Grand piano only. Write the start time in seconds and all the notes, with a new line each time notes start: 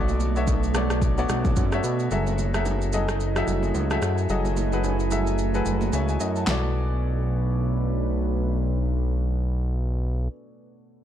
Already playing: B3 F#4 A4 C#5 D5 E5
0.36 B3 F#4 A4 C#5 E5
0.75 B3 F#4 A4 C#5 D5
1.18 B3 F#4 A4 C#5 D5
1.72 B3 F#4 A4 C#5 E5
2.11 F#3 F#4 G#4 A4 E5
2.54 F#3 F#4 G#4 A4 E5
2.93 F#3 F#4 G#4 A4 D#5
3.36 F#3 F#4 G#4 A4 E5
3.90 F#3 F#4 G#4 A4 E5
4.29 F#3 F#4 G#4 A4 D#5
4.72 F#3 F#4 G#4 A4 B4
5.11 F#3 F#4 G#4 A4 E5
5.54 F#3 F#4 G#4 A4 B4
5.93 C#5 E5 G#5
6.09 E5 G#5
6.21 D#5
6.37 F#5 A5
6.46 B3 F#4 A4 C#5
6.50 D5